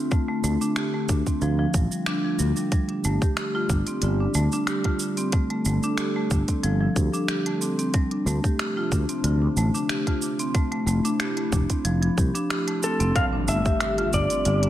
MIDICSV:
0, 0, Header, 1, 7, 480
1, 0, Start_track
1, 0, Tempo, 652174
1, 82, Time_signature, 4, 2, 24, 8
1, 10816, End_track
2, 0, Start_track
2, 0, Title_t, "Electric slide guitar"
2, 0, Program_c, 0, 29
2, 9449, Note_on_c, 0, 69, 85
2, 9685, Note_on_c, 0, 77, 118
2, 9692, Note_off_c, 0, 69, 0
2, 9749, Note_off_c, 0, 77, 0
2, 9927, Note_on_c, 0, 76, 104
2, 10407, Note_on_c, 0, 74, 101
2, 10419, Note_off_c, 0, 76, 0
2, 10816, Note_off_c, 0, 74, 0
2, 10816, End_track
3, 0, Start_track
3, 0, Title_t, "Marimba"
3, 0, Program_c, 1, 12
3, 0, Note_on_c, 1, 60, 72
3, 76, Note_off_c, 1, 60, 0
3, 81, Note_on_c, 1, 57, 77
3, 197, Note_off_c, 1, 57, 0
3, 209, Note_on_c, 1, 57, 96
3, 316, Note_off_c, 1, 57, 0
3, 324, Note_on_c, 1, 57, 90
3, 445, Note_off_c, 1, 57, 0
3, 451, Note_on_c, 1, 62, 94
3, 556, Note_off_c, 1, 62, 0
3, 564, Note_on_c, 1, 67, 74
3, 678, Note_off_c, 1, 67, 0
3, 691, Note_on_c, 1, 57, 76
3, 796, Note_off_c, 1, 57, 0
3, 801, Note_on_c, 1, 62, 71
3, 924, Note_off_c, 1, 62, 0
3, 933, Note_on_c, 1, 60, 64
3, 1037, Note_off_c, 1, 60, 0
3, 1044, Note_on_c, 1, 53, 90
3, 1159, Note_off_c, 1, 53, 0
3, 1171, Note_on_c, 1, 53, 93
3, 1276, Note_off_c, 1, 53, 0
3, 1412, Note_on_c, 1, 55, 72
3, 1474, Note_off_c, 1, 55, 0
3, 1523, Note_on_c, 1, 62, 89
3, 1638, Note_off_c, 1, 62, 0
3, 1649, Note_on_c, 1, 53, 64
3, 1750, Note_off_c, 1, 53, 0
3, 1760, Note_on_c, 1, 55, 66
3, 1883, Note_off_c, 1, 55, 0
3, 1891, Note_on_c, 1, 55, 70
3, 1995, Note_off_c, 1, 55, 0
3, 2004, Note_on_c, 1, 55, 82
3, 2076, Note_off_c, 1, 55, 0
3, 2134, Note_on_c, 1, 62, 73
3, 2238, Note_off_c, 1, 62, 0
3, 2244, Note_on_c, 1, 57, 94
3, 2365, Note_off_c, 1, 57, 0
3, 2373, Note_on_c, 1, 67, 73
3, 2472, Note_off_c, 1, 67, 0
3, 2486, Note_on_c, 1, 67, 70
3, 2599, Note_off_c, 1, 67, 0
3, 2612, Note_on_c, 1, 65, 102
3, 2674, Note_off_c, 1, 65, 0
3, 2724, Note_on_c, 1, 62, 65
3, 2845, Note_off_c, 1, 62, 0
3, 2853, Note_on_c, 1, 60, 67
3, 2957, Note_off_c, 1, 60, 0
3, 2964, Note_on_c, 1, 50, 73
3, 3036, Note_off_c, 1, 50, 0
3, 3094, Note_on_c, 1, 62, 70
3, 3198, Note_off_c, 1, 62, 0
3, 3204, Note_on_c, 1, 57, 89
3, 3325, Note_off_c, 1, 57, 0
3, 3333, Note_on_c, 1, 62, 96
3, 3438, Note_off_c, 1, 62, 0
3, 3445, Note_on_c, 1, 67, 77
3, 3559, Note_off_c, 1, 67, 0
3, 3573, Note_on_c, 1, 65, 91
3, 3635, Note_off_c, 1, 65, 0
3, 3683, Note_on_c, 1, 62, 67
3, 3804, Note_off_c, 1, 62, 0
3, 3810, Note_on_c, 1, 60, 76
3, 3916, Note_off_c, 1, 60, 0
3, 3920, Note_on_c, 1, 57, 78
3, 4036, Note_off_c, 1, 57, 0
3, 4051, Note_on_c, 1, 57, 91
3, 4156, Note_off_c, 1, 57, 0
3, 4166, Note_on_c, 1, 57, 86
3, 4286, Note_off_c, 1, 57, 0
3, 4295, Note_on_c, 1, 62, 97
3, 4398, Note_off_c, 1, 62, 0
3, 4404, Note_on_c, 1, 67, 73
3, 4518, Note_off_c, 1, 67, 0
3, 4534, Note_on_c, 1, 57, 78
3, 4638, Note_off_c, 1, 57, 0
3, 4647, Note_on_c, 1, 62, 69
3, 4766, Note_off_c, 1, 62, 0
3, 4774, Note_on_c, 1, 60, 63
3, 4878, Note_off_c, 1, 60, 0
3, 4882, Note_on_c, 1, 53, 95
3, 4998, Note_off_c, 1, 53, 0
3, 5011, Note_on_c, 1, 53, 94
3, 5116, Note_off_c, 1, 53, 0
3, 5121, Note_on_c, 1, 67, 69
3, 5237, Note_off_c, 1, 67, 0
3, 5251, Note_on_c, 1, 62, 97
3, 5357, Note_off_c, 1, 62, 0
3, 5365, Note_on_c, 1, 67, 77
3, 5479, Note_off_c, 1, 67, 0
3, 5494, Note_on_c, 1, 57, 70
3, 5598, Note_off_c, 1, 57, 0
3, 5603, Note_on_c, 1, 60, 68
3, 5724, Note_off_c, 1, 60, 0
3, 5732, Note_on_c, 1, 60, 73
3, 5837, Note_off_c, 1, 60, 0
3, 5843, Note_on_c, 1, 55, 83
3, 5916, Note_off_c, 1, 55, 0
3, 5973, Note_on_c, 1, 62, 79
3, 6077, Note_off_c, 1, 62, 0
3, 6085, Note_on_c, 1, 57, 91
3, 6205, Note_off_c, 1, 57, 0
3, 6213, Note_on_c, 1, 67, 71
3, 6312, Note_off_c, 1, 67, 0
3, 6324, Note_on_c, 1, 67, 71
3, 6438, Note_off_c, 1, 67, 0
3, 6456, Note_on_c, 1, 65, 97
3, 6516, Note_off_c, 1, 65, 0
3, 6567, Note_on_c, 1, 62, 72
3, 6686, Note_off_c, 1, 62, 0
3, 6693, Note_on_c, 1, 60, 70
3, 6797, Note_off_c, 1, 60, 0
3, 6803, Note_on_c, 1, 50, 75
3, 6876, Note_off_c, 1, 50, 0
3, 6932, Note_on_c, 1, 62, 65
3, 7037, Note_off_c, 1, 62, 0
3, 7046, Note_on_c, 1, 57, 90
3, 7166, Note_off_c, 1, 57, 0
3, 7172, Note_on_c, 1, 62, 99
3, 7277, Note_off_c, 1, 62, 0
3, 7283, Note_on_c, 1, 67, 74
3, 7398, Note_off_c, 1, 67, 0
3, 7412, Note_on_c, 1, 65, 85
3, 7475, Note_off_c, 1, 65, 0
3, 7526, Note_on_c, 1, 62, 69
3, 7646, Note_off_c, 1, 62, 0
3, 7652, Note_on_c, 1, 60, 74
3, 7757, Note_off_c, 1, 60, 0
3, 7762, Note_on_c, 1, 57, 84
3, 7878, Note_off_c, 1, 57, 0
3, 7890, Note_on_c, 1, 57, 102
3, 7991, Note_off_c, 1, 57, 0
3, 8000, Note_on_c, 1, 57, 96
3, 8123, Note_off_c, 1, 57, 0
3, 8130, Note_on_c, 1, 62, 100
3, 8236, Note_off_c, 1, 62, 0
3, 8242, Note_on_c, 1, 67, 80
3, 8358, Note_off_c, 1, 67, 0
3, 8370, Note_on_c, 1, 57, 76
3, 8476, Note_off_c, 1, 57, 0
3, 8484, Note_on_c, 1, 62, 77
3, 8605, Note_off_c, 1, 62, 0
3, 8611, Note_on_c, 1, 60, 66
3, 8716, Note_off_c, 1, 60, 0
3, 8720, Note_on_c, 1, 53, 95
3, 8836, Note_off_c, 1, 53, 0
3, 8847, Note_on_c, 1, 53, 89
3, 8954, Note_off_c, 1, 53, 0
3, 8960, Note_on_c, 1, 67, 69
3, 9076, Note_off_c, 1, 67, 0
3, 9086, Note_on_c, 1, 62, 101
3, 9194, Note_off_c, 1, 62, 0
3, 9199, Note_on_c, 1, 67, 83
3, 9316, Note_off_c, 1, 67, 0
3, 9328, Note_on_c, 1, 57, 71
3, 9435, Note_off_c, 1, 57, 0
3, 9440, Note_on_c, 1, 60, 70
3, 9559, Note_off_c, 1, 60, 0
3, 9568, Note_on_c, 1, 60, 78
3, 9675, Note_off_c, 1, 60, 0
3, 9681, Note_on_c, 1, 55, 81
3, 9754, Note_off_c, 1, 55, 0
3, 9809, Note_on_c, 1, 62, 75
3, 9916, Note_off_c, 1, 62, 0
3, 9922, Note_on_c, 1, 57, 98
3, 10044, Note_off_c, 1, 57, 0
3, 10053, Note_on_c, 1, 67, 76
3, 10152, Note_off_c, 1, 67, 0
3, 10164, Note_on_c, 1, 67, 75
3, 10278, Note_off_c, 1, 67, 0
3, 10291, Note_on_c, 1, 65, 103
3, 10354, Note_off_c, 1, 65, 0
3, 10402, Note_on_c, 1, 62, 67
3, 10524, Note_off_c, 1, 62, 0
3, 10531, Note_on_c, 1, 60, 72
3, 10636, Note_off_c, 1, 60, 0
3, 10643, Note_on_c, 1, 50, 81
3, 10716, Note_off_c, 1, 50, 0
3, 10772, Note_on_c, 1, 62, 70
3, 10816, Note_off_c, 1, 62, 0
3, 10816, End_track
4, 0, Start_track
4, 0, Title_t, "Ambient pad"
4, 0, Program_c, 2, 92
4, 0, Note_on_c, 2, 50, 80
4, 0, Note_on_c, 2, 57, 71
4, 0, Note_on_c, 2, 65, 86
4, 79, Note_on_c, 2, 62, 68
4, 1973, Note_off_c, 2, 65, 0
4, 1981, Note_off_c, 2, 62, 0
4, 2001, Note_on_c, 2, 67, 86
4, 2003, Note_on_c, 2, 55, 73
4, 3902, Note_off_c, 2, 67, 0
4, 3926, Note_on_c, 2, 69, 88
4, 5808, Note_off_c, 2, 50, 0
4, 5810, Note_off_c, 2, 57, 0
4, 5813, Note_off_c, 2, 55, 0
4, 5825, Note_off_c, 2, 69, 0
4, 5846, Note_on_c, 2, 53, 78
4, 5848, Note_on_c, 2, 48, 78
4, 5849, Note_on_c, 2, 57, 71
4, 5849, Note_on_c, 2, 62, 90
4, 7746, Note_off_c, 2, 62, 0
4, 7759, Note_on_c, 2, 64, 89
4, 9654, Note_off_c, 2, 53, 0
4, 9655, Note_off_c, 2, 48, 0
4, 9656, Note_off_c, 2, 57, 0
4, 9661, Note_off_c, 2, 64, 0
4, 9684, Note_on_c, 2, 67, 87
4, 9686, Note_on_c, 2, 57, 76
4, 9687, Note_on_c, 2, 55, 72
4, 9688, Note_on_c, 2, 50, 82
4, 10816, Note_off_c, 2, 50, 0
4, 10816, Note_off_c, 2, 55, 0
4, 10816, Note_off_c, 2, 57, 0
4, 10816, Note_off_c, 2, 67, 0
4, 10816, End_track
5, 0, Start_track
5, 0, Title_t, "Fretless electric bass"
5, 0, Program_c, 3, 35
5, 322, Note_on_c, 3, 38, 95
5, 410, Note_off_c, 3, 38, 0
5, 804, Note_on_c, 3, 38, 77
5, 891, Note_off_c, 3, 38, 0
5, 1042, Note_on_c, 3, 38, 88
5, 1212, Note_off_c, 3, 38, 0
5, 1284, Note_on_c, 3, 33, 79
5, 1371, Note_off_c, 3, 33, 0
5, 1764, Note_on_c, 3, 38, 75
5, 1851, Note_off_c, 3, 38, 0
5, 2246, Note_on_c, 3, 31, 91
5, 2332, Note_off_c, 3, 31, 0
5, 2721, Note_on_c, 3, 31, 83
5, 2809, Note_off_c, 3, 31, 0
5, 2963, Note_on_c, 3, 31, 95
5, 3132, Note_off_c, 3, 31, 0
5, 3200, Note_on_c, 3, 38, 83
5, 3289, Note_off_c, 3, 38, 0
5, 4163, Note_on_c, 3, 31, 92
5, 4250, Note_off_c, 3, 31, 0
5, 4644, Note_on_c, 3, 31, 83
5, 4731, Note_off_c, 3, 31, 0
5, 4887, Note_on_c, 3, 31, 90
5, 5054, Note_off_c, 3, 31, 0
5, 5124, Note_on_c, 3, 38, 83
5, 5211, Note_off_c, 3, 38, 0
5, 6081, Note_on_c, 3, 38, 93
5, 6169, Note_off_c, 3, 38, 0
5, 6564, Note_on_c, 3, 38, 82
5, 6651, Note_off_c, 3, 38, 0
5, 6799, Note_on_c, 3, 38, 92
5, 6970, Note_off_c, 3, 38, 0
5, 7041, Note_on_c, 3, 33, 86
5, 7129, Note_off_c, 3, 33, 0
5, 7996, Note_on_c, 3, 29, 88
5, 8087, Note_off_c, 3, 29, 0
5, 8481, Note_on_c, 3, 29, 88
5, 8569, Note_off_c, 3, 29, 0
5, 8720, Note_on_c, 3, 29, 90
5, 8890, Note_off_c, 3, 29, 0
5, 8965, Note_on_c, 3, 36, 77
5, 9051, Note_off_c, 3, 36, 0
5, 9570, Note_on_c, 3, 29, 79
5, 9646, Note_off_c, 3, 29, 0
5, 9923, Note_on_c, 3, 31, 93
5, 10010, Note_off_c, 3, 31, 0
5, 10404, Note_on_c, 3, 31, 86
5, 10491, Note_off_c, 3, 31, 0
5, 10642, Note_on_c, 3, 31, 93
5, 10812, Note_off_c, 3, 31, 0
5, 10816, End_track
6, 0, Start_track
6, 0, Title_t, "Impact"
6, 0, Program_c, 4, 103
6, 9681, Note_on_c, 4, 60, 70
6, 10816, Note_off_c, 4, 60, 0
6, 10816, End_track
7, 0, Start_track
7, 0, Title_t, "Drums"
7, 83, Note_on_c, 9, 82, 32
7, 85, Note_on_c, 9, 36, 109
7, 156, Note_off_c, 9, 82, 0
7, 159, Note_off_c, 9, 36, 0
7, 324, Note_on_c, 9, 82, 79
7, 397, Note_off_c, 9, 82, 0
7, 452, Note_on_c, 9, 82, 43
7, 525, Note_off_c, 9, 82, 0
7, 560, Note_on_c, 9, 26, 89
7, 561, Note_on_c, 9, 82, 31
7, 634, Note_off_c, 9, 26, 0
7, 635, Note_off_c, 9, 82, 0
7, 801, Note_on_c, 9, 82, 72
7, 804, Note_on_c, 9, 36, 105
7, 874, Note_off_c, 9, 82, 0
7, 877, Note_off_c, 9, 36, 0
7, 931, Note_on_c, 9, 82, 43
7, 932, Note_on_c, 9, 36, 63
7, 1005, Note_off_c, 9, 36, 0
7, 1005, Note_off_c, 9, 82, 0
7, 1041, Note_on_c, 9, 82, 32
7, 1115, Note_off_c, 9, 82, 0
7, 1280, Note_on_c, 9, 82, 81
7, 1282, Note_on_c, 9, 36, 110
7, 1354, Note_off_c, 9, 82, 0
7, 1356, Note_off_c, 9, 36, 0
7, 1410, Note_on_c, 9, 82, 46
7, 1483, Note_off_c, 9, 82, 0
7, 1519, Note_on_c, 9, 26, 94
7, 1520, Note_on_c, 9, 82, 30
7, 1592, Note_off_c, 9, 26, 0
7, 1594, Note_off_c, 9, 82, 0
7, 1759, Note_on_c, 9, 82, 75
7, 1833, Note_off_c, 9, 82, 0
7, 1886, Note_on_c, 9, 82, 44
7, 1960, Note_off_c, 9, 82, 0
7, 2000, Note_on_c, 9, 42, 57
7, 2001, Note_on_c, 9, 36, 103
7, 2002, Note_on_c, 9, 82, 31
7, 2074, Note_off_c, 9, 36, 0
7, 2074, Note_off_c, 9, 42, 0
7, 2075, Note_off_c, 9, 82, 0
7, 2125, Note_on_c, 9, 42, 27
7, 2198, Note_off_c, 9, 42, 0
7, 2239, Note_on_c, 9, 82, 75
7, 2313, Note_off_c, 9, 82, 0
7, 2368, Note_on_c, 9, 36, 108
7, 2369, Note_on_c, 9, 82, 40
7, 2442, Note_off_c, 9, 36, 0
7, 2443, Note_off_c, 9, 82, 0
7, 2479, Note_on_c, 9, 26, 85
7, 2479, Note_on_c, 9, 42, 58
7, 2480, Note_on_c, 9, 82, 30
7, 2552, Note_off_c, 9, 26, 0
7, 2552, Note_off_c, 9, 42, 0
7, 2554, Note_off_c, 9, 82, 0
7, 2720, Note_on_c, 9, 36, 100
7, 2720, Note_on_c, 9, 82, 72
7, 2793, Note_off_c, 9, 36, 0
7, 2793, Note_off_c, 9, 82, 0
7, 2845, Note_on_c, 9, 42, 40
7, 2846, Note_on_c, 9, 82, 38
7, 2919, Note_off_c, 9, 42, 0
7, 2920, Note_off_c, 9, 82, 0
7, 2956, Note_on_c, 9, 42, 63
7, 2957, Note_on_c, 9, 82, 32
7, 3030, Note_off_c, 9, 42, 0
7, 3031, Note_off_c, 9, 82, 0
7, 3197, Note_on_c, 9, 82, 73
7, 3270, Note_off_c, 9, 82, 0
7, 3327, Note_on_c, 9, 82, 43
7, 3401, Note_off_c, 9, 82, 0
7, 3437, Note_on_c, 9, 26, 89
7, 3437, Note_on_c, 9, 42, 59
7, 3439, Note_on_c, 9, 82, 29
7, 3511, Note_off_c, 9, 26, 0
7, 3511, Note_off_c, 9, 42, 0
7, 3512, Note_off_c, 9, 82, 0
7, 3565, Note_on_c, 9, 42, 38
7, 3570, Note_on_c, 9, 36, 57
7, 3638, Note_off_c, 9, 42, 0
7, 3644, Note_off_c, 9, 36, 0
7, 3676, Note_on_c, 9, 82, 76
7, 3750, Note_off_c, 9, 82, 0
7, 3807, Note_on_c, 9, 42, 29
7, 3808, Note_on_c, 9, 82, 44
7, 3880, Note_off_c, 9, 42, 0
7, 3881, Note_off_c, 9, 82, 0
7, 3918, Note_on_c, 9, 42, 64
7, 3919, Note_on_c, 9, 82, 31
7, 3922, Note_on_c, 9, 36, 104
7, 3992, Note_off_c, 9, 42, 0
7, 3993, Note_off_c, 9, 82, 0
7, 3996, Note_off_c, 9, 36, 0
7, 4049, Note_on_c, 9, 42, 30
7, 4123, Note_off_c, 9, 42, 0
7, 4159, Note_on_c, 9, 82, 72
7, 4233, Note_off_c, 9, 82, 0
7, 4291, Note_on_c, 9, 82, 39
7, 4365, Note_off_c, 9, 82, 0
7, 4398, Note_on_c, 9, 26, 92
7, 4398, Note_on_c, 9, 42, 57
7, 4399, Note_on_c, 9, 82, 31
7, 4471, Note_off_c, 9, 26, 0
7, 4471, Note_off_c, 9, 42, 0
7, 4473, Note_off_c, 9, 82, 0
7, 4642, Note_on_c, 9, 82, 70
7, 4644, Note_on_c, 9, 36, 98
7, 4715, Note_off_c, 9, 82, 0
7, 4717, Note_off_c, 9, 36, 0
7, 4770, Note_on_c, 9, 42, 40
7, 4771, Note_on_c, 9, 82, 39
7, 4773, Note_on_c, 9, 36, 56
7, 4843, Note_off_c, 9, 42, 0
7, 4845, Note_off_c, 9, 82, 0
7, 4847, Note_off_c, 9, 36, 0
7, 4884, Note_on_c, 9, 42, 68
7, 4885, Note_on_c, 9, 82, 32
7, 4957, Note_off_c, 9, 42, 0
7, 4958, Note_off_c, 9, 82, 0
7, 5124, Note_on_c, 9, 36, 101
7, 5124, Note_on_c, 9, 82, 72
7, 5198, Note_off_c, 9, 36, 0
7, 5198, Note_off_c, 9, 82, 0
7, 5252, Note_on_c, 9, 82, 43
7, 5326, Note_off_c, 9, 82, 0
7, 5361, Note_on_c, 9, 26, 87
7, 5361, Note_on_c, 9, 42, 60
7, 5362, Note_on_c, 9, 82, 31
7, 5435, Note_off_c, 9, 26, 0
7, 5435, Note_off_c, 9, 42, 0
7, 5436, Note_off_c, 9, 82, 0
7, 5491, Note_on_c, 9, 42, 41
7, 5565, Note_off_c, 9, 42, 0
7, 5605, Note_on_c, 9, 82, 71
7, 5678, Note_off_c, 9, 82, 0
7, 5732, Note_on_c, 9, 42, 28
7, 5734, Note_on_c, 9, 82, 38
7, 5806, Note_off_c, 9, 42, 0
7, 5807, Note_off_c, 9, 82, 0
7, 5841, Note_on_c, 9, 42, 67
7, 5843, Note_on_c, 9, 82, 31
7, 5844, Note_on_c, 9, 36, 108
7, 5915, Note_off_c, 9, 42, 0
7, 5916, Note_off_c, 9, 82, 0
7, 5918, Note_off_c, 9, 36, 0
7, 5971, Note_on_c, 9, 42, 31
7, 6044, Note_off_c, 9, 42, 0
7, 6086, Note_on_c, 9, 82, 72
7, 6160, Note_off_c, 9, 82, 0
7, 6212, Note_on_c, 9, 36, 92
7, 6213, Note_on_c, 9, 82, 40
7, 6286, Note_off_c, 9, 36, 0
7, 6287, Note_off_c, 9, 82, 0
7, 6325, Note_on_c, 9, 26, 88
7, 6325, Note_on_c, 9, 42, 62
7, 6326, Note_on_c, 9, 82, 30
7, 6398, Note_off_c, 9, 26, 0
7, 6398, Note_off_c, 9, 42, 0
7, 6400, Note_off_c, 9, 82, 0
7, 6563, Note_on_c, 9, 36, 97
7, 6564, Note_on_c, 9, 82, 75
7, 6637, Note_off_c, 9, 36, 0
7, 6638, Note_off_c, 9, 82, 0
7, 6690, Note_on_c, 9, 42, 41
7, 6691, Note_on_c, 9, 82, 38
7, 6763, Note_off_c, 9, 42, 0
7, 6765, Note_off_c, 9, 82, 0
7, 6801, Note_on_c, 9, 42, 69
7, 6802, Note_on_c, 9, 82, 30
7, 6875, Note_off_c, 9, 42, 0
7, 6876, Note_off_c, 9, 82, 0
7, 7042, Note_on_c, 9, 82, 74
7, 7116, Note_off_c, 9, 82, 0
7, 7173, Note_on_c, 9, 82, 43
7, 7247, Note_off_c, 9, 82, 0
7, 7282, Note_on_c, 9, 26, 91
7, 7282, Note_on_c, 9, 42, 65
7, 7283, Note_on_c, 9, 82, 32
7, 7355, Note_off_c, 9, 26, 0
7, 7355, Note_off_c, 9, 42, 0
7, 7357, Note_off_c, 9, 82, 0
7, 7411, Note_on_c, 9, 36, 60
7, 7412, Note_on_c, 9, 42, 42
7, 7485, Note_off_c, 9, 36, 0
7, 7485, Note_off_c, 9, 42, 0
7, 7520, Note_on_c, 9, 82, 71
7, 7594, Note_off_c, 9, 82, 0
7, 7649, Note_on_c, 9, 42, 28
7, 7651, Note_on_c, 9, 82, 42
7, 7723, Note_off_c, 9, 42, 0
7, 7724, Note_off_c, 9, 82, 0
7, 7762, Note_on_c, 9, 36, 110
7, 7762, Note_on_c, 9, 42, 66
7, 7763, Note_on_c, 9, 82, 30
7, 7835, Note_off_c, 9, 42, 0
7, 7836, Note_off_c, 9, 36, 0
7, 7837, Note_off_c, 9, 82, 0
7, 7889, Note_on_c, 9, 42, 30
7, 7963, Note_off_c, 9, 42, 0
7, 8003, Note_on_c, 9, 82, 71
7, 8077, Note_off_c, 9, 82, 0
7, 8132, Note_on_c, 9, 42, 30
7, 8133, Note_on_c, 9, 82, 41
7, 8206, Note_off_c, 9, 42, 0
7, 8207, Note_off_c, 9, 82, 0
7, 8241, Note_on_c, 9, 26, 89
7, 8241, Note_on_c, 9, 42, 62
7, 8243, Note_on_c, 9, 82, 29
7, 8315, Note_off_c, 9, 26, 0
7, 8315, Note_off_c, 9, 42, 0
7, 8316, Note_off_c, 9, 82, 0
7, 8368, Note_on_c, 9, 42, 32
7, 8441, Note_off_c, 9, 42, 0
7, 8482, Note_on_c, 9, 36, 101
7, 8482, Note_on_c, 9, 82, 69
7, 8555, Note_off_c, 9, 82, 0
7, 8556, Note_off_c, 9, 36, 0
7, 8609, Note_on_c, 9, 42, 46
7, 8610, Note_on_c, 9, 36, 56
7, 8610, Note_on_c, 9, 82, 41
7, 8682, Note_off_c, 9, 42, 0
7, 8683, Note_off_c, 9, 82, 0
7, 8684, Note_off_c, 9, 36, 0
7, 8721, Note_on_c, 9, 42, 74
7, 8722, Note_on_c, 9, 82, 33
7, 8794, Note_off_c, 9, 42, 0
7, 8795, Note_off_c, 9, 82, 0
7, 8850, Note_on_c, 9, 42, 34
7, 8924, Note_off_c, 9, 42, 0
7, 8962, Note_on_c, 9, 36, 109
7, 8964, Note_on_c, 9, 82, 72
7, 9036, Note_off_c, 9, 36, 0
7, 9037, Note_off_c, 9, 82, 0
7, 9091, Note_on_c, 9, 42, 34
7, 9092, Note_on_c, 9, 82, 44
7, 9165, Note_off_c, 9, 42, 0
7, 9166, Note_off_c, 9, 82, 0
7, 9203, Note_on_c, 9, 26, 96
7, 9203, Note_on_c, 9, 42, 67
7, 9204, Note_on_c, 9, 82, 30
7, 9277, Note_off_c, 9, 26, 0
7, 9277, Note_off_c, 9, 42, 0
7, 9278, Note_off_c, 9, 82, 0
7, 9330, Note_on_c, 9, 42, 45
7, 9403, Note_off_c, 9, 42, 0
7, 9442, Note_on_c, 9, 82, 74
7, 9515, Note_off_c, 9, 82, 0
7, 9569, Note_on_c, 9, 42, 33
7, 9571, Note_on_c, 9, 82, 40
7, 9643, Note_off_c, 9, 42, 0
7, 9644, Note_off_c, 9, 82, 0
7, 9683, Note_on_c, 9, 36, 118
7, 9683, Note_on_c, 9, 42, 69
7, 9684, Note_on_c, 9, 82, 33
7, 9756, Note_off_c, 9, 36, 0
7, 9756, Note_off_c, 9, 42, 0
7, 9758, Note_off_c, 9, 82, 0
7, 9922, Note_on_c, 9, 82, 76
7, 9995, Note_off_c, 9, 82, 0
7, 10049, Note_on_c, 9, 82, 42
7, 10051, Note_on_c, 9, 36, 103
7, 10123, Note_off_c, 9, 82, 0
7, 10125, Note_off_c, 9, 36, 0
7, 10160, Note_on_c, 9, 26, 97
7, 10160, Note_on_c, 9, 42, 64
7, 10162, Note_on_c, 9, 82, 30
7, 10234, Note_off_c, 9, 26, 0
7, 10234, Note_off_c, 9, 42, 0
7, 10235, Note_off_c, 9, 82, 0
7, 10290, Note_on_c, 9, 42, 30
7, 10364, Note_off_c, 9, 42, 0
7, 10400, Note_on_c, 9, 82, 75
7, 10404, Note_on_c, 9, 36, 60
7, 10474, Note_off_c, 9, 82, 0
7, 10477, Note_off_c, 9, 36, 0
7, 10526, Note_on_c, 9, 42, 42
7, 10527, Note_on_c, 9, 82, 42
7, 10599, Note_off_c, 9, 42, 0
7, 10600, Note_off_c, 9, 82, 0
7, 10637, Note_on_c, 9, 42, 68
7, 10639, Note_on_c, 9, 82, 35
7, 10711, Note_off_c, 9, 42, 0
7, 10712, Note_off_c, 9, 82, 0
7, 10767, Note_on_c, 9, 42, 35
7, 10816, Note_off_c, 9, 42, 0
7, 10816, End_track
0, 0, End_of_file